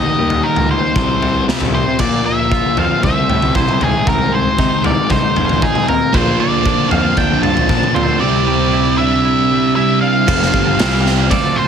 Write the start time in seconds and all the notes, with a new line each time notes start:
Already playing: D#3 A#3 D#4 D#5
0.19 D#2 G3
0.30 floor tom
0.43 D#3 A#4
0.56 C#2, floor tom
0.71 A#3 C5
0.95 C2 C3 G3 C4, kick, floor tom, mid tom
1.22 C3, floor tom
1.48 G3, snare
1.61 C2, floor tom, mid tom
1.75 C3 C5
1.88 C3
1.99 A#2 F3 D5, kick, floor tom, crash
2.04 A#3
2.26 A#3 E5
2.52 F4, kick
2.77 F2 A#2 F3 A#3 C4 F5, floor tom
3.03 C2 C3 G3 C4 E5, kick, floor tom
3.17 C2
3.29 A2 G3, floor tom
3.42 C2, floor tom
3.55 C2 E4 C5, kick, mid tom
3.69 mid tom
3.81 C2 G#2 C3 D#3 G#3 G#4, floor tom
3.95 C2
4.07 C3 A#4, kick, floor tom
4.32 G#3 C5
4.58 G#2 C3 D#3 G#3 D#4, kick
4.84 C2 A#3 D5, floor tom
5.10 C2 D#4 C5, kick, floor tom
5.36 F1 G#2 D#3 G#3, floor tom
5.49 floor tom
5.62 D#4 G#4, kick, mid tom
5.75 mid tom
5.88 A#3 A#4, floor tom
6.13 A#1 A#2 D3 F3 A#3 F4 C5, kick, floor tom
6.40 F3 D5
6.66 D4, kick
6.91 F2 A#2 F3 A#3 C4 F5, floor tom
7.17 D4 G5, kick, floor tom
7.31 A#1
7.43 G2 F3 A5, floor tom
7.57 A#1, floor tom
7.69 A#1 A#2 F3 A#3 D4, kick, mid tom
7.83 mid tom
7.95 A#2 C4 C5, floor tom
8.06 D2
8.19 C3 G3 C4 E4 D5
8.47 G3
8.73 E4
8.97 C3 G3 C4 D4 E5
9.25 E4
9.51 G3
9.75 C3 G3 C4 E4 E5
10.01 D4 F5
10.27 F1 F2 C3 F3 A3 C4 F4, kick, crash
10.42 snare
10.53 G1 G2 D3 G3 A3 C4 F4, kick
10.79 C2 C3 G3 C4 G4, snare, ride bell
11.06 snare
11.30 F3 A3 C4 F4 D5, muted picked electric bass stroke, muted distorted electric guitar stroke, kick, ride bell
11.56 C4 F4 C5
11.61 A3